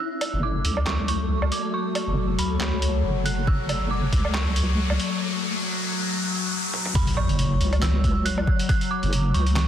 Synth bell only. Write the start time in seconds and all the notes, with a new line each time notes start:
0.00 E6
0.43 D6
0.87 C#6
1.08 C#6
1.52 D6
1.74 C#6
2.39 B5
3.25 F#6
3.48 E6
3.91 D6
4.34 C#6
6.95 B5
7.17 C#6
7.82 E6
8.25 F#6
8.69 F#6
8.91 D6
9.34 C#6
9.56 C#6